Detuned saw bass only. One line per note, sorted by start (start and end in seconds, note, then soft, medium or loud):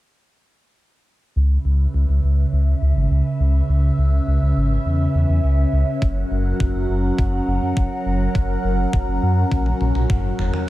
1.36 1.58 C#2 medium
1.65 1.87 C#2 medium
1.94 2.05 C#2 medium
2.09 2.20 C#2 medium
2.23 2.45 C#2 medium
2.53 2.74 C#2 medium
2.82 2.93 C#2 medium
2.96 3.07 G#1 loud
3.11 3.22 C#2 medium
3.40 3.61 C#2 medium
3.69 3.91 C#2 medium
3.98 4.20 C#2 loud
4.27 4.38 C#2 loud
4.42 4.53 C#2 medium
4.57 4.78 G#1 medium
4.86 5.07 E2 medium
5.15 5.25 E2 loud
5.29 5.40 E2 medium
5.44 5.65 C#2 medium
5.73 5.84 C#2 medium
6.02 6.24 F#1 loud
6.31 6.53 F#1 medium
6.60 6.71 F#1 medium
6.75 6.86 F#1 medium
6.89 7.11 F#1 medium
7.19 7.40 F#1 medium
7.48 7.58 F#1 loud
7.62 7.73 F#2 loud
7.77 7.88 F#1 medium
8.06 8.27 F#1 medium
8.35 8.57 F#1 medium
8.64 8.86 F#1 loud
8.93 9.04 F#1 loud
9.08 9.19 F#1 medium
9.22 9.44 F#2 medium
9.52 9.73 A#1 medium
9.81 9.91 A#1 loud
9.95 10.06 A#1 loud
10.10 10.31 F#1 medium
10.39 10.50 F#1 medium